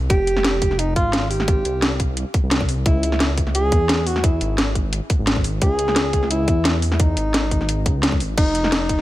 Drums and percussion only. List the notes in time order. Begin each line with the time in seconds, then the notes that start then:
0.10 kick, closed hi-hat
0.27 closed hi-hat
0.37 snare
0.45 snare, closed hi-hat
0.62 kick, closed hi-hat
0.71 snare
0.79 closed hi-hat
0.96 kick, closed hi-hat
1.13 snare, closed hi-hat
1.31 open hi-hat
1.40 snare
1.48 kick, closed hi-hat
1.65 closed hi-hat
1.82 snare, closed hi-hat
2.00 kick, closed hi-hat
2.17 closed hi-hat
2.34 kick, closed hi-hat
2.51 snare, closed hi-hat
2.61 kick
2.69 open hi-hat
2.86 kick, closed hi-hat
3.03 closed hi-hat
3.12 snare
3.20 snare, closed hi-hat
3.38 kick, closed hi-hat
3.47 snare
3.55 closed hi-hat
3.72 kick, closed hi-hat
3.89 snare, closed hi-hat
4.07 open hi-hat
4.16 snare
4.24 kick, closed hi-hat
4.41 closed hi-hat
4.58 snare, closed hi-hat
4.75 kick, closed hi-hat
4.93 closed hi-hat
5.10 kick, closed hi-hat
5.27 snare, closed hi-hat
5.36 kick
5.44 open hi-hat
5.62 kick, closed hi-hat
5.79 closed hi-hat
5.88 snare
5.96 snare, closed hi-hat
6.13 kick, closed hi-hat
6.23 snare
6.31 closed hi-hat
6.48 kick, closed hi-hat
6.65 snare, closed hi-hat
6.82 open hi-hat
6.92 snare
7.00 kick, closed hi-hat
7.17 closed hi-hat
7.34 snare, closed hi-hat
7.51 kick, closed hi-hat
7.61 snare
7.69 closed hi-hat
7.86 kick, closed hi-hat
8.03 snare, closed hi-hat
8.12 kick
8.20 open hi-hat
8.38 kick, closed hi-hat, crash, ride
8.55 closed hi-hat
8.64 snare
8.72 snare, closed hi-hat, ride
8.89 kick, closed hi-hat